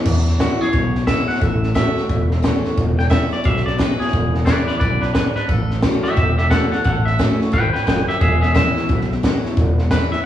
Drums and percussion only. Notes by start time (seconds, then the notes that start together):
0.05 kick, snare, crash
0.27 snare
0.40 kick, snare, hi-hat pedal
0.61 snare
0.74 kick, snare
0.95 snare
1.07 kick, snare, hi-hat pedal
1.29 snare
1.35 snare
1.42 kick, snare
1.63 snare
1.76 kick, snare, hi-hat pedal
1.97 snare
2.09 kick, snare
2.31 snare
2.44 kick, snare, hi-hat pedal
2.65 snare
2.78 kick, snare
2.99 snare
3.11 kick, snare, hi-hat pedal
3.32 snare
3.45 kick, snare
3.57 snare
3.67 snare
3.79 kick, snare, hi-hat pedal
4.01 snare
4.07 snare
4.13 kick, snare
4.35 snare
4.47 kick, snare, hi-hat pedal
4.68 snare
4.81 kick, snare
5.02 snare
5.15 kick, snare, hi-hat pedal
5.36 snare
5.48 kick, snare
5.71 snare
5.83 kick, snare, hi-hat pedal
6.05 snare
6.17 kick, snare
6.38 snare
6.51 kick, snare, hi-hat pedal
6.73 snare
6.85 kick, snare
7.07 snare
7.20 kick, snare, hi-hat pedal
7.41 snare
7.53 kick, snare
7.75 snare
7.88 kick, snare, hi-hat pedal
8.09 snare
8.21 kick, snare
8.43 snare
8.55 kick, snare, hi-hat pedal
8.77 snare
8.90 kick, snare
9.01 snare
9.12 snare
9.23 kick, snare, hi-hat pedal
9.46 snare
9.57 kick, snare
9.78 snare
9.91 kick, snare, hi-hat pedal
10.13 snare